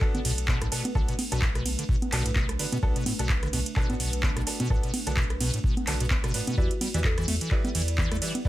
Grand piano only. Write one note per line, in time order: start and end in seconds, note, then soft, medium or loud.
0.01 0.69 B3 medium
0.01 0.69 D4 medium
0.01 0.69 F#4 medium
0.01 0.69 A4 loud
0.72 0.84 B3 medium
0.72 0.84 D4 medium
0.72 0.84 F#4 medium
0.72 0.84 A4 medium
0.95 1.13 B3 medium
0.95 1.13 D4 medium
0.95 1.13 F#4 medium
0.95 1.13 A4 medium
1.32 1.41 B3 medium
1.32 1.41 D4 medium
1.32 1.41 F#4 medium
1.32 1.41 A4 loud
2.12 2.24 B3 loud
2.12 2.24 D4 medium
2.12 2.24 F#4 medium
2.12 2.24 A4 loud
2.59 2.71 B3 medium
2.59 2.71 D4 medium
2.59 2.71 F#4 medium
2.59 2.71 B4 medium
2.83 2.95 B3 medium
2.83 2.94 D4 medium
2.83 2.95 F#4 medium
2.83 2.95 A4 loud
3.19 3.29 B3 medium
3.19 3.29 D4 medium
3.19 3.29 F#4 medium
3.19 3.29 A4 medium
3.76 4.44 B3 medium
3.76 4.44 D4 medium
3.76 4.44 F#4 medium
3.76 4.44 A4 loud
4.47 4.59 B3 medium
4.47 4.59 D4 medium
4.47 4.59 F#4 medium
4.47 4.59 A4 medium
4.70 4.88 B3 medium
4.70 4.88 D4 medium
4.70 4.88 F#4 medium
4.70 4.88 A4 loud
5.07 5.16 B3 medium
5.07 5.16 D4 medium
5.07 5.16 F#4 medium
5.07 5.16 A4 loud
5.87 5.99 B3 medium
5.87 5.99 D4 medium
5.87 5.99 F#4 medium
5.87 5.99 A4 loud
6.34 6.46 B3 medium
6.34 6.46 D4 medium
6.34 6.46 F#4 medium
6.34 6.46 B4 medium
6.58 6.70 E4 medium
6.58 6.70 G4 medium
6.58 6.70 B4 medium
6.58 6.70 D5 loud
6.94 7.04 E4 medium
6.94 7.04 G4 medium
6.94 7.04 B4 medium
6.94 7.04 D5 medium
7.51 8.19 E4 medium
7.51 8.19 G4 medium
7.51 8.19 B4 medium
7.51 8.19 D5 loud
8.22 8.34 E4 medium
8.22 8.34 G4 medium
8.22 8.34 B4 medium
8.22 8.34 D5 medium
8.45 8.49 E4 medium
8.45 8.49 G4 medium
8.45 8.49 B4 medium
8.45 8.49 D5 loud